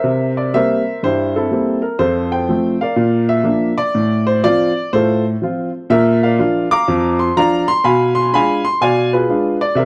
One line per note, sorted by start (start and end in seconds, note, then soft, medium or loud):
0.00 0.46 C3 medium
0.00 0.35 A#4 medium
0.00 0.35 C5 medium
0.00 0.38 E5 medium
0.37 0.55 D5 medium
0.54 0.81 G3 medium
0.54 0.81 A#3 medium
0.54 0.81 C4 medium
0.54 1.00 A#4 medium
0.54 1.00 C5 medium
0.54 1.03 E5 loud
1.03 1.45 G2 medium
1.03 1.34 E4 medium
1.03 1.34 G4 medium
1.03 1.36 C5 loud
1.36 1.51 C4 medium
1.36 1.82 E4 medium
1.36 1.84 A4 medium
1.51 1.78 G3 soft
1.51 1.78 A#3 medium
1.51 1.79 C4 medium
1.82 2.00 A#4 medium
1.99 2.41 F2 medium
1.99 2.30 F4 medium
1.99 2.30 A4 medium
1.99 2.31 C5 loud
2.32 2.78 C5 medium
2.32 2.81 G5 medium
2.49 2.75 F3 medium
2.49 2.76 A3 medium
2.49 2.77 C4 medium
2.81 3.27 A#4 medium
2.81 3.27 D5 medium
2.81 3.30 F5 medium
2.96 3.38 A#2 medium
3.29 3.78 E5 loud
3.44 3.71 F3 medium
3.44 3.72 A#3 medium
3.44 3.72 D4 medium
3.78 4.26 D5 loud
3.95 4.36 A2 medium
4.27 4.43 C5 medium
4.44 4.70 F3 medium
4.44 4.70 C4 medium
4.44 4.71 F4 medium
4.44 4.92 D5 loud
4.93 5.34 A2 medium
4.93 5.23 F4 medium
4.93 5.23 A4 medium
4.93 5.24 C5 loud
5.42 5.68 F3 medium
5.42 5.69 C4 medium
5.42 5.69 F4 medium
5.90 6.31 A#2 loud
5.90 6.20 A#4 medium
5.90 6.22 E5 loud
6.23 6.68 A#4 medium
6.23 6.68 D5 medium
6.23 6.71 F5 medium
6.39 6.65 F3 medium
6.39 6.65 D4 medium
6.39 6.66 F4 medium
6.71 7.16 F5 medium
6.71 7.17 A#5 medium
6.71 7.19 D6 loud
6.88 7.29 F2 medium
7.19 7.35 C6 medium
7.37 7.63 F3 medium
7.37 7.63 D4 medium
7.37 7.63 F4 medium
7.37 7.67 D5 medium
7.37 7.67 F5 medium
7.37 7.68 A#5 loud
7.68 7.84 C6 loud
7.84 8.25 B2 medium
7.84 8.14 F5 medium
7.84 8.14 G#5 medium
7.84 8.16 B5 loud
8.15 8.32 C6 loud
8.33 8.60 G#3 medium
8.33 8.60 D4 medium
8.33 8.60 F4 medium
8.33 8.64 F5 medium
8.33 8.64 G#5 medium
8.33 8.65 B5 loud
8.65 8.81 C6 loud
8.81 9.22 B2 medium
8.81 9.12 D5 medium
8.81 9.12 F5 medium
8.81 9.13 G#5 loud
9.13 9.28 F4 medium
9.13 9.59 G#4 medium
9.13 9.62 B4 medium
9.29 9.56 G#3 medium
9.29 9.56 D4 medium
9.29 9.57 F4 medium
9.61 9.78 D5 loud
9.75 9.85 C3 medium
9.75 9.85 A#4 medium
9.75 9.85 C5 medium
9.75 9.85 E5 medium